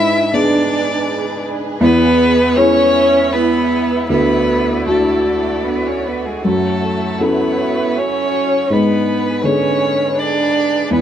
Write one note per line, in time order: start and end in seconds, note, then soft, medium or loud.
0.00 0.31 G#2 medium
0.00 1.82 D4 medium
0.00 0.33 E4 loud
0.00 4.09 G#4 medium
0.00 4.09 B4 medium
0.00 0.35 E5 medium
0.31 1.78 B3 medium
0.31 1.43 D4 medium
0.31 1.78 D4 medium
0.31 0.44 G#4 medium
0.31 1.78 G#4 medium
0.31 1.44 D5 medium
0.52 0.63 D5 medium
0.71 0.82 G#5 medium
0.89 1.00 G#5 medium
1.07 1.18 G#4 loud
1.46 1.56 D5 medium
1.80 2.54 E2 medium
1.80 2.59 B3 loud
1.80 1.92 E4 medium
1.80 6.42 E4 medium
1.80 2.58 B4 loud
2.01 2.12 B4 medium
2.20 2.31 G#4 medium
2.56 4.05 B3 medium
2.56 3.34 C#4 loud
2.56 2.68 E4 loud
2.56 4.05 E4 medium
2.56 4.05 G#4 medium
2.56 3.34 C#5 loud
2.76 2.87 B4 medium
2.94 3.06 E5 medium
3.13 3.24 E5 medium
3.32 4.08 B3 loud
3.32 3.44 E4 medium
3.32 4.08 B4 medium
3.70 3.82 B4 medium
4.08 4.85 D2 medium
4.08 4.87 B3 medium
4.08 4.21 D4 medium
4.08 8.70 F#4 medium
4.08 4.85 B4 medium
4.08 6.43 D5 medium
4.29 4.40 A4 medium
4.47 4.59 F#4 soft
4.86 5.65 A3 medium
4.86 4.98 D4 medium
4.86 6.39 D4 soft
4.86 6.40 E4 soft
4.86 6.40 F#4 soft
4.86 5.68 A4 medium
5.05 5.17 A4 soft
5.25 5.37 D5 soft
5.44 5.56 D5 soft
5.63 5.88 B3 medium
5.63 5.75 D4 medium
5.63 5.88 B4 medium
5.87 6.06 C#4 medium
5.87 6.08 C#5 medium
6.04 6.27 B3 medium
6.04 6.16 A4 soft
6.04 6.26 B4 medium
6.25 6.44 G#3 medium
6.25 6.44 G#4 soft
6.42 7.19 F#2 medium
6.42 7.22 A3 medium
6.42 8.66 E4 medium
6.42 6.54 F#4 medium
6.42 7.23 A4 medium
6.42 8.70 C#5 soft
6.62 6.74 C#5 soft
6.82 6.93 A4 soft
7.20 7.99 B3 medium
7.20 8.66 C#4 soft
7.20 8.66 E4 soft
7.20 7.32 F#4 medium
7.20 8.66 A4 soft
7.20 8.00 B4 medium
7.40 7.51 C#5 soft
7.60 7.70 E5 medium
7.77 7.88 E5 medium
7.96 8.74 C#4 medium
7.96 8.07 F#4 medium
7.96 8.71 C#5 medium
8.69 9.41 G#2 medium
8.69 10.91 D3 medium
8.69 9.43 B3 medium
8.69 8.81 G#4 medium
8.69 11.01 G#4 medium
8.69 9.46 B4 medium
8.69 11.01 B4 medium
8.90 9.00 D5 medium
9.08 9.18 B4 medium
9.42 10.87 D3 soft
9.42 10.87 B3 soft
9.42 10.16 C#4 medium
9.42 9.55 G#4 medium
9.42 10.87 G#4 soft
9.42 10.20 C#5 medium
9.63 9.74 D5 medium
9.81 9.91 G#5 medium
10.00 10.11 G#5 medium
10.17 10.93 D4 medium
10.17 10.29 G#4 medium
10.17 10.91 D5 medium
10.55 10.65 D5 medium
10.90 11.01 E2 medium
10.90 11.01 B3 medium
10.90 11.01 E4 medium
10.90 11.01 B4 medium